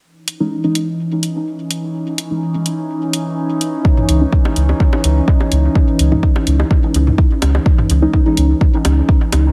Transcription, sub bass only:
X:1
M:4/4
L:1/8
Q:"Swing 16ths" 1/4=126
K:C#m
V:1 name="Sub bass" clef=bass
z8 | z8 | z C,, z C,, z C,, z C,, | z C,, z C,, z C,, z C,, |
z C,, z C,, z C,, z C,, |]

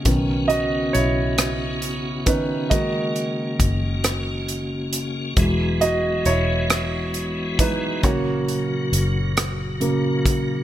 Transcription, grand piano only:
X:1
M:6/8
L:1/8
Q:3/8=45
K:F#mix
V:1 name="Grand piano"
z [Fd] [Ec]3 [DB] | [Fd]4 z2 | z [Fd] [Ec]3 [DB] | [Fc]4 z2 |]
V:2 name="Grand piano" clef=bass
[D,B,C] z4 [D,B,C] | [D,G,A,]6 | [E,F,G,]3 z2 [E,F,G,] | [C,F,A,] z3 [C,F,A,] z |]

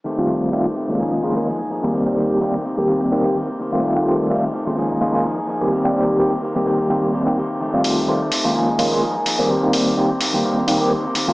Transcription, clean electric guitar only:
X:1
M:4/4
L:1/16
Q:"Swing 16ths" 1/4=127
K:Fmix
V:1 name="Clean electric guitar"
[E,A,CG]2 [E,A,CG]2 [E,A,CG]2 [E,A,CG] [A,CG] [F,B,E_A] [B,EA] [F,B,EA] [B,EA] [F,B,EA] [B,EA] [F,B,EA]2 | [E,B,CG]2 [E,B,CG]2 [E,B,CG]2 [E,B,CG] [B,CG] [E,B,CG] [B,CG] [E,B,CG] [B,CG] [E,B,CG] [B,CG] [E,B,CG]2 | [E,A,CG]2 [E,A,CG]2 [E,A,CG]2 [E,A,CG] [A,CG] [F,B,E_A] [B,EA] [F,B,EA] [B,EA] [F,B,EA] [B,EA] [F,B,EA]2 | [E,B,CG]2 [E,B,CG]2 [E,B,CG] [B,CG] [E,B,CG] [B,CG] [E,B,CG] [B,CG] [E,B,CG] [B,CG] [E,B,CG] [B,CG] [E,B,CG]2 |
[E,A,CG]2 [E,A,CG]2 [E,A,CG]2 [E,A,CG] [A,CG] [F,B,E_A] [B,EA] [F,B,EA] [B,EA] [F,B,EA] [B,EA] [F,B,EA]2 | [E,B,CG]2 [E,B,CG]2 [E,B,CG] [B,CG] [E,B,CG] [B,CG] [E,B,CG] [B,CG] [E,B,CG] [B,CG] [E,B,CG] [B,CG] [E,B,CG]2 |]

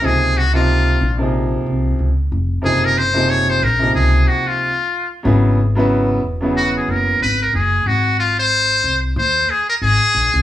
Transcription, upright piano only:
X:1
M:4/4
L:1/16
Q:"Swing 16ths" 1/4=92
K:Db
V:1 name="Upright piano"
[C,F,B,EA]2 z [C,F,B,EF]3 z [C,F,B,EA]4- [C,F,B,EA] z4 | [C,F,B,EA]2 z [C,F,B,EA]3 z [C,F,B,EA]4- [C,F,B,EA] z4 | [D,G,=B,=E^G]2 z [D,_G,B,E=B]3 z [D,G,B,E^G]4- [D,_G,B,E^G] z4 | z16 |]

